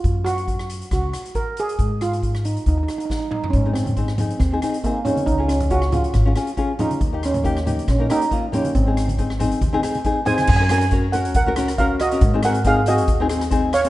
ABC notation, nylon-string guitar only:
X:1
M:4/4
L:1/16
Q:"Swing 16ths" 1/4=138
K:Abmix
V:1 name="Nylon-string guitar"
z16 | z16 | z [CEA]2 z [CEA] z [CEA]2 z [CEA] [CEA] z [CEA] z [CEA]2 | z [DFA]2 z [DFA] z [DFA]2 z [DFA] [DFA] z [DFA] z [DFA]2 |
z [B,E=G]2 z [B,EG] z [B,EG]2 z [B,EB] [B,EG] z [B,EF] z [B,EG]2 | z [CEA]2 z [CEA] z [CEA]2 z [CEA] [CEA] z [CEA] z [CEA]2 | z [DGB] [DGB] z [DGB] z [DGB]2 z [DGB] [DGB] z [DGB]2 z [DGB] | z [CEA] [CEA] z [CEA] z [CEA]2 z [CEA] [CEA] z [CEA]2 z [CE] |]